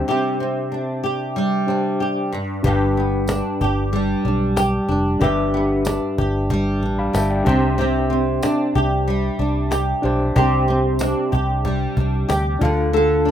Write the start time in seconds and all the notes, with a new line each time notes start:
Already playing: G3 C4 D4 G4 C5 G5
0.08 C3 G4
0.40 C4
0.72 D4
1.04 G4
1.36 G3
1.67 D4 G4 C5 G5
2.00 G4
2.33 G2
2.63 G1 G2 D4 G4 B4 F5, cajon bass
2.73 G5
2.97 B3, cajon slap
3.13 cajon slap
3.27 D4, cajon slap, tambourine
3.61 G1 G4, cajon bass
3.77 cajon slap
3.93 G3
4.25 B1 D4, cajon slap
4.56 G4, cajon slap, tambourine
4.88 F1 D4
5.05 cajon slap
5.20 G1 G2 D4 G4 B4 E5, cajon bass
5.54 B3, cajon slap
5.70 cajon slap
5.85 D4, cajon slap, tambourine
6.18 G1 G4, cajon bass
6.34 cajon slap
6.50 G3, cajon bass
6.82 A1 D4, cajon slap
6.99 F5 B5
7.13 G1 G4 E5 A5, cajon slap, tambourine
7.30 D5 G5
7.44 C2 C3 D4 G4 C5 G5, cajon bass
7.63 cajon slap
7.78 C3 G4
8.10 C4
8.27 cajon slap
8.43 D4, cajon slap, tambourine
8.75 C2 G4, cajon bass
8.91 cajon slap
9.08 G3
9.39 C2 D4, cajon slap
9.71 G4, cajon slap, tambourine
10.02 B1 D4 G4 C5 G5
10.20 cajon slap
10.36 C2 C3 G4, cajon bass
10.68 C4
10.84 cajon slap
10.99 D4, cajon slap, tambourine
11.32 C2 G4, cajon bass
11.49 cajon slap
11.65 G3, cajon bass
11.97 C2 D4, cajon bass
12.13 cajon slap
12.29 D2 G4, cajon slap, tambourine
12.59 D2 D3 D4 F4 A4, cajon bass
12.63 F5
12.78 cajon slap
12.93 D3 A4
13.25 D4